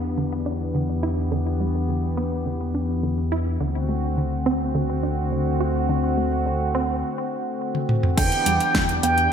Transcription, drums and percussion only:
0, 0, Header, 1, 2, 480
1, 0, Start_track
1, 0, Key_signature, 1, "minor"
1, 0, Tempo, 571429
1, 1108, Time_signature, 4, 2, 24, 8
1, 7835, End_track
2, 0, Start_track
2, 0, Title_t, "Drums"
2, 6508, Note_on_c, 9, 48, 50
2, 6592, Note_off_c, 9, 48, 0
2, 6628, Note_on_c, 9, 47, 70
2, 6712, Note_off_c, 9, 47, 0
2, 6748, Note_on_c, 9, 45, 74
2, 6832, Note_off_c, 9, 45, 0
2, 6867, Note_on_c, 9, 36, 121
2, 6868, Note_on_c, 9, 42, 68
2, 6868, Note_on_c, 9, 49, 100
2, 6951, Note_off_c, 9, 36, 0
2, 6952, Note_off_c, 9, 42, 0
2, 6952, Note_off_c, 9, 49, 0
2, 6989, Note_on_c, 9, 42, 42
2, 7073, Note_off_c, 9, 42, 0
2, 7108, Note_on_c, 9, 42, 100
2, 7192, Note_off_c, 9, 42, 0
2, 7228, Note_on_c, 9, 42, 42
2, 7312, Note_off_c, 9, 42, 0
2, 7347, Note_on_c, 9, 36, 120
2, 7349, Note_on_c, 9, 38, 120
2, 7349, Note_on_c, 9, 42, 69
2, 7431, Note_off_c, 9, 36, 0
2, 7433, Note_off_c, 9, 38, 0
2, 7433, Note_off_c, 9, 42, 0
2, 7467, Note_on_c, 9, 42, 43
2, 7551, Note_off_c, 9, 42, 0
2, 7588, Note_on_c, 9, 42, 94
2, 7672, Note_off_c, 9, 42, 0
2, 7708, Note_on_c, 9, 42, 41
2, 7792, Note_off_c, 9, 42, 0
2, 7835, End_track
0, 0, End_of_file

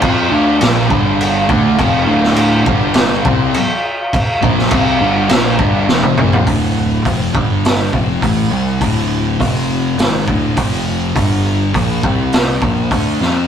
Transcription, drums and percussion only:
0, 0, Header, 1, 2, 480
1, 0, Start_track
1, 0, Key_signature, -1, "minor"
1, 0, Tempo, 585938
1, 1461, Time_signature, 4, 2, 24, 8
1, 11036, End_track
2, 0, Start_track
2, 0, Title_t, "Drums"
2, 13, Note_on_c, 9, 49, 62
2, 15, Note_on_c, 9, 36, 101
2, 95, Note_off_c, 9, 49, 0
2, 97, Note_off_c, 9, 36, 0
2, 498, Note_on_c, 9, 49, 69
2, 509, Note_on_c, 9, 38, 102
2, 580, Note_off_c, 9, 49, 0
2, 591, Note_off_c, 9, 38, 0
2, 741, Note_on_c, 9, 36, 115
2, 823, Note_off_c, 9, 36, 0
2, 988, Note_on_c, 9, 49, 59
2, 1069, Note_off_c, 9, 49, 0
2, 1222, Note_on_c, 9, 36, 123
2, 1303, Note_off_c, 9, 36, 0
2, 1464, Note_on_c, 9, 36, 107
2, 1465, Note_on_c, 9, 49, 60
2, 1546, Note_off_c, 9, 36, 0
2, 1547, Note_off_c, 9, 49, 0
2, 1830, Note_on_c, 9, 38, 30
2, 1912, Note_off_c, 9, 38, 0
2, 1935, Note_on_c, 9, 49, 58
2, 2017, Note_off_c, 9, 49, 0
2, 2182, Note_on_c, 9, 36, 119
2, 2264, Note_off_c, 9, 36, 0
2, 2407, Note_on_c, 9, 49, 59
2, 2419, Note_on_c, 9, 38, 116
2, 2489, Note_off_c, 9, 49, 0
2, 2501, Note_off_c, 9, 38, 0
2, 2662, Note_on_c, 9, 36, 121
2, 2744, Note_off_c, 9, 36, 0
2, 2902, Note_on_c, 9, 49, 61
2, 2983, Note_off_c, 9, 49, 0
2, 3385, Note_on_c, 9, 36, 110
2, 3390, Note_on_c, 9, 49, 64
2, 3467, Note_off_c, 9, 36, 0
2, 3471, Note_off_c, 9, 49, 0
2, 3626, Note_on_c, 9, 36, 107
2, 3708, Note_off_c, 9, 36, 0
2, 3755, Note_on_c, 9, 38, 31
2, 3837, Note_off_c, 9, 38, 0
2, 3856, Note_on_c, 9, 49, 66
2, 3862, Note_on_c, 9, 36, 108
2, 3938, Note_off_c, 9, 49, 0
2, 3944, Note_off_c, 9, 36, 0
2, 4336, Note_on_c, 9, 49, 65
2, 4347, Note_on_c, 9, 38, 105
2, 4418, Note_off_c, 9, 49, 0
2, 4429, Note_off_c, 9, 38, 0
2, 4578, Note_on_c, 9, 36, 117
2, 4660, Note_off_c, 9, 36, 0
2, 4821, Note_on_c, 9, 38, 61
2, 4903, Note_off_c, 9, 38, 0
2, 4934, Note_on_c, 9, 48, 66
2, 5016, Note_off_c, 9, 48, 0
2, 5056, Note_on_c, 9, 45, 100
2, 5138, Note_off_c, 9, 45, 0
2, 5184, Note_on_c, 9, 43, 86
2, 5266, Note_off_c, 9, 43, 0
2, 5299, Note_on_c, 9, 36, 109
2, 5300, Note_on_c, 9, 46, 54
2, 5381, Note_off_c, 9, 36, 0
2, 5382, Note_off_c, 9, 46, 0
2, 5778, Note_on_c, 9, 36, 102
2, 5782, Note_on_c, 9, 46, 55
2, 5860, Note_off_c, 9, 36, 0
2, 5864, Note_off_c, 9, 46, 0
2, 6018, Note_on_c, 9, 36, 112
2, 6100, Note_off_c, 9, 36, 0
2, 6262, Note_on_c, 9, 46, 52
2, 6274, Note_on_c, 9, 38, 111
2, 6344, Note_off_c, 9, 46, 0
2, 6356, Note_off_c, 9, 38, 0
2, 6497, Note_on_c, 9, 36, 109
2, 6579, Note_off_c, 9, 36, 0
2, 6737, Note_on_c, 9, 36, 100
2, 6739, Note_on_c, 9, 46, 56
2, 6819, Note_off_c, 9, 36, 0
2, 6821, Note_off_c, 9, 46, 0
2, 7217, Note_on_c, 9, 36, 96
2, 7217, Note_on_c, 9, 46, 60
2, 7299, Note_off_c, 9, 36, 0
2, 7299, Note_off_c, 9, 46, 0
2, 7700, Note_on_c, 9, 36, 102
2, 7708, Note_on_c, 9, 46, 59
2, 7782, Note_off_c, 9, 36, 0
2, 7790, Note_off_c, 9, 46, 0
2, 8180, Note_on_c, 9, 46, 61
2, 8191, Note_on_c, 9, 38, 107
2, 8262, Note_off_c, 9, 46, 0
2, 8273, Note_off_c, 9, 38, 0
2, 8418, Note_on_c, 9, 36, 118
2, 8500, Note_off_c, 9, 36, 0
2, 8656, Note_on_c, 9, 46, 58
2, 8659, Note_on_c, 9, 36, 109
2, 8738, Note_off_c, 9, 46, 0
2, 8741, Note_off_c, 9, 36, 0
2, 9140, Note_on_c, 9, 36, 106
2, 9143, Note_on_c, 9, 46, 56
2, 9222, Note_off_c, 9, 36, 0
2, 9225, Note_off_c, 9, 46, 0
2, 9621, Note_on_c, 9, 36, 102
2, 9624, Note_on_c, 9, 46, 52
2, 9703, Note_off_c, 9, 36, 0
2, 9706, Note_off_c, 9, 46, 0
2, 9859, Note_on_c, 9, 36, 121
2, 9940, Note_off_c, 9, 36, 0
2, 10095, Note_on_c, 9, 46, 50
2, 10107, Note_on_c, 9, 38, 109
2, 10177, Note_off_c, 9, 46, 0
2, 10189, Note_off_c, 9, 38, 0
2, 10336, Note_on_c, 9, 36, 111
2, 10418, Note_off_c, 9, 36, 0
2, 10576, Note_on_c, 9, 36, 96
2, 10578, Note_on_c, 9, 46, 54
2, 10658, Note_off_c, 9, 36, 0
2, 10660, Note_off_c, 9, 46, 0
2, 10829, Note_on_c, 9, 38, 33
2, 10911, Note_off_c, 9, 38, 0
2, 11036, End_track
0, 0, End_of_file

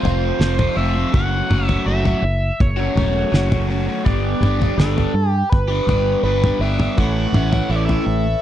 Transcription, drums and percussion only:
0, 0, Header, 1, 2, 480
1, 0, Start_track
1, 0, Tempo, 730816
1, 743, Time_signature, 4, 2, 24, 8
1, 5529, End_track
2, 0, Start_track
2, 0, Title_t, "Drums"
2, 33, Note_on_c, 9, 43, 87
2, 99, Note_off_c, 9, 43, 0
2, 268, Note_on_c, 9, 38, 72
2, 334, Note_off_c, 9, 38, 0
2, 387, Note_on_c, 9, 43, 76
2, 387, Note_on_c, 9, 47, 75
2, 453, Note_off_c, 9, 43, 0
2, 453, Note_off_c, 9, 47, 0
2, 749, Note_on_c, 9, 36, 95
2, 749, Note_on_c, 9, 43, 77
2, 814, Note_off_c, 9, 36, 0
2, 815, Note_off_c, 9, 43, 0
2, 990, Note_on_c, 9, 47, 76
2, 1055, Note_off_c, 9, 47, 0
2, 1110, Note_on_c, 9, 43, 82
2, 1175, Note_off_c, 9, 43, 0
2, 1349, Note_on_c, 9, 43, 75
2, 1414, Note_off_c, 9, 43, 0
2, 1710, Note_on_c, 9, 36, 106
2, 1713, Note_on_c, 9, 43, 82
2, 1776, Note_off_c, 9, 36, 0
2, 1779, Note_off_c, 9, 43, 0
2, 1953, Note_on_c, 9, 43, 79
2, 2019, Note_off_c, 9, 43, 0
2, 2193, Note_on_c, 9, 38, 66
2, 2259, Note_off_c, 9, 38, 0
2, 2311, Note_on_c, 9, 43, 77
2, 2311, Note_on_c, 9, 47, 75
2, 2377, Note_off_c, 9, 43, 0
2, 2377, Note_off_c, 9, 47, 0
2, 2667, Note_on_c, 9, 43, 74
2, 2669, Note_on_c, 9, 36, 92
2, 2733, Note_off_c, 9, 43, 0
2, 2734, Note_off_c, 9, 36, 0
2, 2909, Note_on_c, 9, 47, 84
2, 2975, Note_off_c, 9, 47, 0
2, 3032, Note_on_c, 9, 43, 79
2, 3098, Note_off_c, 9, 43, 0
2, 3150, Note_on_c, 9, 38, 77
2, 3150, Note_on_c, 9, 47, 78
2, 3216, Note_off_c, 9, 38, 0
2, 3216, Note_off_c, 9, 47, 0
2, 3270, Note_on_c, 9, 43, 75
2, 3335, Note_off_c, 9, 43, 0
2, 3629, Note_on_c, 9, 36, 98
2, 3629, Note_on_c, 9, 43, 80
2, 3694, Note_off_c, 9, 36, 0
2, 3695, Note_off_c, 9, 43, 0
2, 3868, Note_on_c, 9, 43, 83
2, 3934, Note_off_c, 9, 43, 0
2, 4227, Note_on_c, 9, 43, 75
2, 4227, Note_on_c, 9, 47, 74
2, 4293, Note_off_c, 9, 43, 0
2, 4293, Note_off_c, 9, 47, 0
2, 4463, Note_on_c, 9, 47, 79
2, 4529, Note_off_c, 9, 47, 0
2, 4583, Note_on_c, 9, 43, 77
2, 4586, Note_on_c, 9, 36, 86
2, 4649, Note_off_c, 9, 43, 0
2, 4652, Note_off_c, 9, 36, 0
2, 4823, Note_on_c, 9, 47, 86
2, 4889, Note_off_c, 9, 47, 0
2, 4943, Note_on_c, 9, 43, 81
2, 5009, Note_off_c, 9, 43, 0
2, 5183, Note_on_c, 9, 43, 81
2, 5249, Note_off_c, 9, 43, 0
2, 5529, End_track
0, 0, End_of_file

